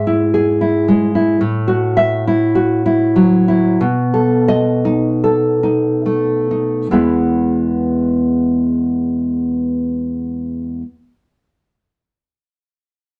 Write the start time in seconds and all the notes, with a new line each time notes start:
Already playing: G#2 G#4 E5
0.07 E4
0.34 G#4
0.61 E4
0.88 G#3
1.15 E4
1.41 A2
1.68 F#4
1.97 E5
2.27 E4
2.55 F#4
2.86 E4
3.16 F#3
3.48 E4
3.81 B2
4.14 A4
4.48 D#5
4.85 D#4
5.24 A4
5.63 D#4
6.06 A3
6.51 D#4
6.91 E2 G#3 B3 E4 G#4